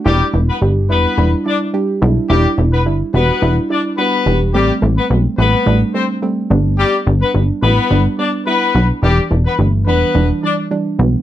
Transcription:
<<
  \new Staff \with { instrumentName = "Horn section" } { \time 4/4 \key e \minor \tempo 4 = 107 <g g'>8 r16 <b b'>16 r8 <b b'>8. r16 <d' d''>16 r4 r16 | <g g'>8 r16 <b b'>16 r8 <b b'>8. r16 <d' d''>16 r16 <b b'>8. r16 | <g g'>8 r16 <b b'>16 r8 <b b'>8. r16 <c' c''>16 r4 r16 | <g g'>8 r16 <b b'>16 r8 <b b'>8. r16 <d' d''>16 r16 <b b'>8. r16 |
<g g'>8 r16 <b b'>16 r8 <b b'>8. r16 <d' d''>16 r4 r16 | }
  \new Staff \with { instrumentName = "Synth pluck" } { \time 4/4 \key e \minor <g d' e'>8 <g d' e'>8 <g d' g'>8 <g d' e'>8 <g d' e'>8 <g d' e'>8 <g d' g'>8 <g d' e'>8 | <g d' e'>8 <g d' e'>8 <g d' e'>8 <g d' fis'>8 <g d' e'>8 <g d' e'>8 <g d' fis'>8 <g d' g'>8 | <g a c'>8 <g a c'>8 <g a c'>8 <g a c'>8 <g a d'>8 <g a c'>8 <g a c'>8 <g b d'>8~ | <g b d'>8 <g b d'>8 <g b d'>8 <g b e'>8 <g b d'>8 <g b d'>8 <g b e'>8 <g b d'>8 |
<e g d'>8 <e g d'>8 <e g a>8 <e g d'>8 <e g d'>8 <e g d'>8 <e g d'>8 <e g b>8 | }
  \new Staff \with { instrumentName = "Analog synth bass" } { \clef bass \time 4/4 \key e \minor e,,8 e,,8 g,,8 e,,8 e,,8 r4 b,,8 | e,,8 e,,8 g,,8 e,,8 e,,8 r4 e,,8 | a,,8 a,,8 b,,8 a,,8 a,,8 r4 g,,8~ | g,,8 g,,8 g,,8 a,,8 g,,8 r4 b,,8 |
e,,8 e,,8 g,,8 e,,8 e,,8 r4 b,,8 | }
>>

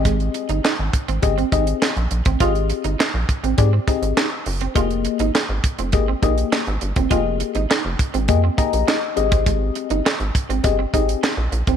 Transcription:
<<
  \new Staff \with { instrumentName = "FM electric piano" } { \time 4/4 \key aes \major \tempo 4 = 102 << { r1 | r1 | r1 | r2 r8 bes''8 ees''4 |
r1 | } \\ { <c' g' aes' ees''>4 r4 <c' g' aes' ees''>8 <c' g' aes' ees''>8 r4 | <c' g' aes' ees''>4 r4 <c' g' aes' d''>8 <c' g' aes' ees''>8 r4 | <bes g' aes' ees''>4 r4 <bes g' aes' ees''>8 <bes g' aes' ees''>8 r4 | <bes g' aes' ees''>4 r4 <bes g' aes' ees''>8 <bes g' aes' ees''>8 r8 <c' g' aes' ees''>8~ |
<c' g' aes' ees''>4 r4 <c' g' aes' ees''>8 <c' g' aes' ees''>8 r4 | } >> }
  \new Staff \with { instrumentName = "Clean electric guitar" } { \time 4/4 \key aes \major aes16 r8 ees'16 ees'16 r8 c'16 r16 c'16 ees'16 r16 ees'16 r8 c'16 | f'16 r8 ees'16 ees'16 r8 c'16 r16 c'16 ees'16 r16 ees'16 r8 c'16 | f'16 r8 ees'16 ees'16 r8 c'16 r16 c'16 ees'16 r16 ees'16 r8 c'16 | f'16 r8 ees'16 ees'16 r8 c'16 r16 c'16 ees'16 r16 ees'16 r8 c'16 |
aes16 r8 ees'16 ees'16 r8 c'16 r16 c'16 ees'16 r16 ees'16 r8 c'16 | }
  \new Staff \with { instrumentName = "Analog synth bass" } { \clef bass \time 4/4 \key aes \major aes,,8. g,,16 r16 aes,,16 r16 aes,,16 g,,8 aes,,8 r16 bes,,16 bes,,16 a,,16 | aes,,8. g,,16 r16 bes,,16 r16 aes,,16 aes,8 r16 aes,,16 r8 ges,,8 | f,,8. aes,,16 r16 aes,,16 r16 f,,16 aes,,8 bes,,8 r16 aes,,16 g,,16 ges,,16 | f,,8. aes,,16 r16 f,,16 r16 aes,,16 f,8 r16 bes,,16 r8 aes,,8~ |
aes,,8. g,,16 r16 aes,,16 r16 aes,,16 g,,8 aes,,8 r16 bes,,16 bes,,16 a,,16 | }
  \new DrumStaff \with { instrumentName = "Drums" } \drummode { \time 4/4 <hh bd>16 hh16 hh16 hh16 <hc sn>8 <hh bd>16 hh16 <hh bd>16 hh16 <hh bd>16 hh16 <hc sn>16 hh16 hh16 <hh bd>16 | <hh bd>16 hh16 hh16 hh16 <hc sn>8 <hh bd>16 hh16 <hh bd>8 <hh bd>16 hh16 <hc sn>8 hho16 hh16 | <hh bd>16 hh16 hh16 hh16 <hc sn>8 <hh bd>16 hh16 <hh bd>8 <hh bd>16 hh16 <hc sn>16 hh16 hh16 <hh bd>16 | <hh bd>8 hh16 hh16 <hc sn>8 <hh bd>16 hh16 <hh bd>8 <hh bd>16 hh16 <hc sn>8 hh16 <hh bd>16 |
<hh bd>8 hh16 hh16 <hc sn>16 hh16 <hh bd>16 hh16 <hh bd>8 <hh bd>16 hh16 <hc sn>8 hh16 <hh bd>16 | }
>>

